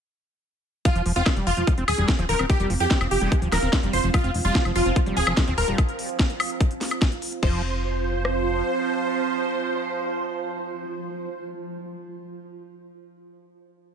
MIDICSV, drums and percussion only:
0, 0, Header, 1, 2, 480
1, 0, Start_track
1, 0, Tempo, 410959
1, 995, Time_signature, 4, 2, 24, 8
1, 16289, End_track
2, 0, Start_track
2, 0, Title_t, "Drums"
2, 995, Note_on_c, 9, 36, 120
2, 995, Note_on_c, 9, 42, 69
2, 1111, Note_off_c, 9, 42, 0
2, 1112, Note_off_c, 9, 36, 0
2, 1115, Note_on_c, 9, 42, 41
2, 1232, Note_off_c, 9, 42, 0
2, 1235, Note_on_c, 9, 46, 102
2, 1351, Note_off_c, 9, 46, 0
2, 1355, Note_on_c, 9, 42, 39
2, 1472, Note_off_c, 9, 42, 0
2, 1475, Note_on_c, 9, 36, 119
2, 1475, Note_on_c, 9, 38, 120
2, 1475, Note_on_c, 9, 42, 65
2, 1475, Note_on_c, 9, 76, 36
2, 1592, Note_off_c, 9, 36, 0
2, 1592, Note_off_c, 9, 38, 0
2, 1592, Note_off_c, 9, 42, 0
2, 1592, Note_off_c, 9, 76, 0
2, 1595, Note_on_c, 9, 42, 39
2, 1711, Note_off_c, 9, 42, 0
2, 1714, Note_on_c, 9, 46, 104
2, 1831, Note_off_c, 9, 46, 0
2, 1835, Note_on_c, 9, 42, 41
2, 1951, Note_off_c, 9, 42, 0
2, 1954, Note_on_c, 9, 42, 66
2, 1955, Note_on_c, 9, 36, 122
2, 2071, Note_off_c, 9, 42, 0
2, 2072, Note_off_c, 9, 36, 0
2, 2075, Note_on_c, 9, 42, 42
2, 2191, Note_off_c, 9, 42, 0
2, 2195, Note_on_c, 9, 46, 104
2, 2195, Note_on_c, 9, 76, 75
2, 2311, Note_off_c, 9, 46, 0
2, 2311, Note_off_c, 9, 76, 0
2, 2315, Note_on_c, 9, 42, 43
2, 2432, Note_off_c, 9, 42, 0
2, 2435, Note_on_c, 9, 36, 121
2, 2435, Note_on_c, 9, 38, 115
2, 2435, Note_on_c, 9, 42, 65
2, 2551, Note_off_c, 9, 38, 0
2, 2551, Note_off_c, 9, 42, 0
2, 2552, Note_off_c, 9, 36, 0
2, 2555, Note_on_c, 9, 42, 40
2, 2671, Note_off_c, 9, 42, 0
2, 2674, Note_on_c, 9, 46, 106
2, 2791, Note_off_c, 9, 46, 0
2, 2795, Note_on_c, 9, 42, 40
2, 2795, Note_on_c, 9, 76, 37
2, 2912, Note_off_c, 9, 42, 0
2, 2912, Note_off_c, 9, 76, 0
2, 2915, Note_on_c, 9, 36, 122
2, 2915, Note_on_c, 9, 42, 67
2, 3031, Note_off_c, 9, 42, 0
2, 3032, Note_off_c, 9, 36, 0
2, 3035, Note_on_c, 9, 42, 41
2, 3151, Note_off_c, 9, 42, 0
2, 3155, Note_on_c, 9, 46, 104
2, 3271, Note_off_c, 9, 46, 0
2, 3275, Note_on_c, 9, 42, 41
2, 3392, Note_off_c, 9, 42, 0
2, 3394, Note_on_c, 9, 38, 121
2, 3394, Note_on_c, 9, 42, 67
2, 3395, Note_on_c, 9, 36, 121
2, 3511, Note_off_c, 9, 38, 0
2, 3511, Note_off_c, 9, 42, 0
2, 3512, Note_off_c, 9, 36, 0
2, 3515, Note_on_c, 9, 42, 37
2, 3515, Note_on_c, 9, 76, 71
2, 3631, Note_off_c, 9, 42, 0
2, 3631, Note_off_c, 9, 76, 0
2, 3634, Note_on_c, 9, 46, 111
2, 3751, Note_off_c, 9, 46, 0
2, 3754, Note_on_c, 9, 42, 40
2, 3871, Note_off_c, 9, 42, 0
2, 3875, Note_on_c, 9, 36, 119
2, 3875, Note_on_c, 9, 42, 65
2, 3991, Note_off_c, 9, 42, 0
2, 3992, Note_off_c, 9, 36, 0
2, 3995, Note_on_c, 9, 42, 40
2, 4111, Note_off_c, 9, 42, 0
2, 4115, Note_on_c, 9, 38, 64
2, 4115, Note_on_c, 9, 46, 110
2, 4115, Note_on_c, 9, 76, 37
2, 4232, Note_off_c, 9, 38, 0
2, 4232, Note_off_c, 9, 46, 0
2, 4232, Note_off_c, 9, 76, 0
2, 4235, Note_on_c, 9, 42, 40
2, 4351, Note_off_c, 9, 42, 0
2, 4355, Note_on_c, 9, 36, 127
2, 4355, Note_on_c, 9, 38, 122
2, 4355, Note_on_c, 9, 42, 64
2, 4471, Note_off_c, 9, 38, 0
2, 4471, Note_off_c, 9, 42, 0
2, 4472, Note_off_c, 9, 36, 0
2, 4474, Note_on_c, 9, 42, 39
2, 4591, Note_off_c, 9, 42, 0
2, 4594, Note_on_c, 9, 46, 109
2, 4711, Note_off_c, 9, 46, 0
2, 4715, Note_on_c, 9, 42, 39
2, 4831, Note_off_c, 9, 42, 0
2, 4834, Note_on_c, 9, 42, 62
2, 4834, Note_on_c, 9, 76, 75
2, 4835, Note_on_c, 9, 36, 123
2, 4951, Note_off_c, 9, 42, 0
2, 4951, Note_off_c, 9, 76, 0
2, 4952, Note_off_c, 9, 36, 0
2, 4955, Note_on_c, 9, 42, 40
2, 5071, Note_off_c, 9, 42, 0
2, 5074, Note_on_c, 9, 46, 109
2, 5191, Note_off_c, 9, 46, 0
2, 5314, Note_on_c, 9, 38, 121
2, 5314, Note_on_c, 9, 42, 61
2, 5315, Note_on_c, 9, 36, 126
2, 5431, Note_off_c, 9, 38, 0
2, 5431, Note_off_c, 9, 42, 0
2, 5432, Note_off_c, 9, 36, 0
2, 5434, Note_on_c, 9, 42, 36
2, 5434, Note_on_c, 9, 76, 37
2, 5551, Note_off_c, 9, 42, 0
2, 5551, Note_off_c, 9, 76, 0
2, 5554, Note_on_c, 9, 46, 111
2, 5671, Note_off_c, 9, 46, 0
2, 5674, Note_on_c, 9, 42, 39
2, 5791, Note_off_c, 9, 42, 0
2, 5794, Note_on_c, 9, 42, 63
2, 5795, Note_on_c, 9, 36, 124
2, 5911, Note_off_c, 9, 42, 0
2, 5912, Note_off_c, 9, 36, 0
2, 5915, Note_on_c, 9, 42, 39
2, 6031, Note_off_c, 9, 42, 0
2, 6034, Note_on_c, 9, 46, 113
2, 6151, Note_off_c, 9, 46, 0
2, 6154, Note_on_c, 9, 42, 38
2, 6154, Note_on_c, 9, 76, 82
2, 6271, Note_off_c, 9, 42, 0
2, 6271, Note_off_c, 9, 76, 0
2, 6274, Note_on_c, 9, 38, 116
2, 6274, Note_on_c, 9, 42, 62
2, 6275, Note_on_c, 9, 36, 126
2, 6391, Note_off_c, 9, 38, 0
2, 6391, Note_off_c, 9, 42, 0
2, 6392, Note_off_c, 9, 36, 0
2, 6394, Note_on_c, 9, 42, 37
2, 6511, Note_off_c, 9, 42, 0
2, 6514, Note_on_c, 9, 46, 112
2, 6631, Note_off_c, 9, 46, 0
2, 6634, Note_on_c, 9, 42, 39
2, 6751, Note_off_c, 9, 42, 0
2, 6754, Note_on_c, 9, 42, 64
2, 6754, Note_on_c, 9, 76, 40
2, 6755, Note_on_c, 9, 36, 121
2, 6871, Note_off_c, 9, 36, 0
2, 6871, Note_off_c, 9, 42, 0
2, 6871, Note_off_c, 9, 76, 0
2, 6874, Note_on_c, 9, 42, 37
2, 6991, Note_off_c, 9, 42, 0
2, 6994, Note_on_c, 9, 46, 108
2, 7111, Note_off_c, 9, 46, 0
2, 7114, Note_on_c, 9, 42, 39
2, 7231, Note_off_c, 9, 42, 0
2, 7234, Note_on_c, 9, 38, 117
2, 7234, Note_on_c, 9, 42, 62
2, 7235, Note_on_c, 9, 36, 127
2, 7351, Note_off_c, 9, 38, 0
2, 7351, Note_off_c, 9, 42, 0
2, 7352, Note_off_c, 9, 36, 0
2, 7354, Note_on_c, 9, 42, 37
2, 7471, Note_off_c, 9, 42, 0
2, 7474, Note_on_c, 9, 46, 111
2, 7474, Note_on_c, 9, 76, 84
2, 7591, Note_off_c, 9, 46, 0
2, 7591, Note_off_c, 9, 76, 0
2, 7594, Note_on_c, 9, 42, 38
2, 7711, Note_off_c, 9, 42, 0
2, 7714, Note_on_c, 9, 42, 64
2, 7715, Note_on_c, 9, 36, 127
2, 7831, Note_off_c, 9, 36, 0
2, 7831, Note_off_c, 9, 42, 0
2, 7834, Note_on_c, 9, 42, 38
2, 7951, Note_off_c, 9, 42, 0
2, 7954, Note_on_c, 9, 38, 63
2, 7954, Note_on_c, 9, 46, 113
2, 8071, Note_off_c, 9, 38, 0
2, 8071, Note_off_c, 9, 46, 0
2, 8074, Note_on_c, 9, 42, 40
2, 8074, Note_on_c, 9, 76, 42
2, 8191, Note_off_c, 9, 42, 0
2, 8191, Note_off_c, 9, 76, 0
2, 8194, Note_on_c, 9, 38, 109
2, 8194, Note_on_c, 9, 42, 60
2, 8195, Note_on_c, 9, 36, 127
2, 8311, Note_off_c, 9, 38, 0
2, 8311, Note_off_c, 9, 42, 0
2, 8312, Note_off_c, 9, 36, 0
2, 8315, Note_on_c, 9, 42, 39
2, 8431, Note_off_c, 9, 42, 0
2, 8434, Note_on_c, 9, 46, 116
2, 8551, Note_off_c, 9, 46, 0
2, 8555, Note_on_c, 9, 42, 40
2, 8672, Note_off_c, 9, 42, 0
2, 8675, Note_on_c, 9, 36, 115
2, 8675, Note_on_c, 9, 49, 87
2, 8791, Note_off_c, 9, 49, 0
2, 8792, Note_off_c, 9, 36, 0
2, 9635, Note_on_c, 9, 37, 61
2, 9752, Note_off_c, 9, 37, 0
2, 16289, End_track
0, 0, End_of_file